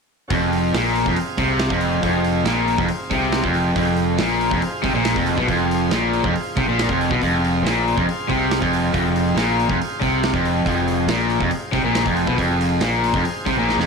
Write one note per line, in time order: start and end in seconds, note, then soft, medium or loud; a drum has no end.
0.28 0.71 F1 medium
0.28 0.74 F2 loud
0.28 0.44 C#4 medium
0.28 0.44 F#4 medium
0.28 0.44 A4 medium
0.28 0.44 F#5 medium
0.28 kick loud
0.28 open hi-hat medium
0.44 3.72 C4 medium
0.44 3.72 F4 medium
0.44 3.72 G#4 medium
0.44 3.72 F5 medium
0.53 open hi-hat medium
0.73 1.04 A#1 medium
0.73 1.06 A#2 loud
0.73 snare loud
0.73 open hi-hat medium
0.96 open hi-hat medium
1.05 1.16 F1 medium
1.05 1.17 F2 loud
1.05 kick loud
1.16 open hi-hat medium
1.37 1.68 C2 medium
1.37 1.71 C3 medium
1.37 kick loud
1.37 open hi-hat medium
1.59 snare loud
1.59 open hi-hat medium
1.70 2.01 F1 medium
1.70 2.02 F2 medium
1.70 kick loud
1.81 open hi-hat medium
2.02 2.43 F1 loud
2.02 2.46 F2 loud
2.02 kick loud
2.02 open hi-hat medium
2.24 open hi-hat medium
2.44 2.76 A#1 medium
2.44 2.79 A#2 loud
2.44 snare loud
2.44 open hi-hat medium
2.68 open hi-hat medium
2.78 2.89 F1 medium
2.78 2.89 F2 loud
2.78 kick loud
2.88 open hi-hat medium
3.10 3.41 C2 medium
3.10 3.43 C3 loud
3.10 kick loud
3.10 open hi-hat medium
3.32 snare loud
3.32 open hi-hat medium
3.43 3.73 F1 medium
3.43 3.76 F2 loud
3.43 kick loud
3.54 open hi-hat medium
3.75 4.16 F1 loud
3.75 4.19 F2 loud
3.75 7.17 F4 medium
3.75 7.17 G#4 medium
3.75 7.17 C5 medium
3.75 7.17 F5 medium
3.75 kick loud
3.75 open hi-hat medium
3.97 open hi-hat medium
4.18 4.49 A#1 medium
4.18 4.50 A#2 loud
4.18 snare loud
4.18 open hi-hat medium
4.41 open hi-hat medium
4.51 4.61 F1 medium
4.51 4.62 F2 loud
4.51 kick loud
4.62 open hi-hat medium
4.83 4.93 C2 medium
4.83 4.93 C3 loud
4.83 kick loud
4.83 open hi-hat medium
4.93 5.14 A#1 medium
4.93 5.16 A#2 loud
5.05 snare loud
5.05 open hi-hat medium
5.15 5.36 F1 medium
5.15 5.37 F2 medium
5.15 kick loud
5.26 open hi-hat medium
5.37 5.47 B1 medium
5.37 5.47 B2 loud
5.37 kick loud
5.47 5.88 F1 medium
5.47 5.90 F2 loud
5.47 kick medium
5.47 open hi-hat medium
5.71 open hi-hat medium
5.90 6.21 A#1 medium
5.90 6.23 A#2 loud
5.90 snare loud
5.90 open hi-hat medium
6.13 open hi-hat medium
6.23 6.33 F1 medium
6.23 6.34 F2 medium
6.23 kick loud
6.36 open hi-hat medium
6.57 6.64 C2 medium
6.57 6.67 C3 loud
6.57 kick loud
6.57 open hi-hat medium
6.65 6.86 A#1 medium
6.65 6.88 A#2 loud
6.79 snare loud
6.79 open hi-hat medium
6.89 7.08 F1 medium
6.89 7.10 F2 medium
6.89 kick loud
7.01 open hi-hat medium
7.10 7.20 B1 medium
7.10 7.20 B2 loud
7.10 kick loud
7.21 7.61 F1 medium
7.21 7.63 F2 loud
7.21 10.63 F4 medium
7.21 10.63 G#4 medium
7.21 10.63 C5 medium
7.21 10.63 F5 medium
7.21 kick medium
7.21 open hi-hat medium
7.44 open hi-hat medium
7.62 7.93 A#1 loud
7.62 7.95 A#2 loud
7.66 snare loud
7.66 open hi-hat medium
7.88 open hi-hat medium
7.97 8.07 F1 medium
7.97 8.07 F2 medium
7.97 kick loud
8.09 open hi-hat medium
8.29 8.58 C2 medium
8.29 8.60 C3 medium
8.29 kick loud
8.29 open hi-hat medium
8.51 snare loud
8.51 open hi-hat medium
8.61 8.91 F1 medium
8.61 8.92 F2 medium
8.61 kick loud
8.73 open hi-hat medium
8.93 9.33 F1 loud
8.93 9.35 F2 medium
8.93 kick loud
8.93 open hi-hat medium
9.16 open hi-hat medium
9.35 9.65 A#1 loud
9.35 9.68 A#2 loud
9.35 snare loud
9.35 open hi-hat medium
9.60 open hi-hat medium
9.68 9.78 F1 medium
9.68 9.78 F2 loud
9.68 kick loud
9.81 open hi-hat medium
10.00 10.31 C2 medium
10.00 10.32 C3 loud
10.00 kick loud
10.00 open hi-hat medium
10.23 snare loud
10.23 open hi-hat medium
10.33 10.63 F1 medium
10.33 10.64 F2 loud
10.33 kick loud
10.45 open hi-hat medium
10.65 11.05 F1 loud
10.65 11.08 F2 loud
10.65 13.86 G#4 medium
10.65 13.86 C5 medium
10.65 13.86 F5 medium
10.65 kick loud
10.65 open hi-hat medium
10.88 open hi-hat medium
11.06 11.37 A#1 medium
11.06 11.40 A#2 loud
11.06 snare loud
11.06 open hi-hat medium
11.30 open hi-hat soft
11.40 11.50 F1 loud
11.40 11.50 F2 loud
11.40 kick loud
11.51 open hi-hat medium
11.72 11.83 C2 medium
11.72 11.83 C3 loud
11.72 kick loud
11.72 open hi-hat medium
11.83 12.03 A#1 medium
11.83 12.05 A#2 loud
11.95 snare loud
11.95 open hi-hat medium
12.05 12.25 F1 medium
12.05 12.26 F2 loud
12.05 kick loud
12.17 open hi-hat medium
12.26 12.37 B1 medium
12.26 12.37 B2 loud
12.26 kick loud
12.37 12.77 F1 medium
12.37 12.80 F2 loud
12.37 kick medium
12.37 open hi-hat medium
12.61 open hi-hat medium
12.80 13.10 A#1 medium
12.80 13.13 A#2 loud
12.80 snare loud
12.80 open hi-hat medium
13.04 open hi-hat medium
13.13 13.23 F1 medium
13.13 13.24 F2 loud
13.13 kick loud
13.25 open hi-hat medium
13.46 13.55 C2 medium
13.46 13.56 C3 medium
13.46 kick loud
13.46 open hi-hat medium
13.55 13.76 A#1 medium
13.55 13.78 A#2 loud
13.69 snare medium
13.76 13.86 F1 medium
13.76 13.86 F2 medium
13.76 snare medium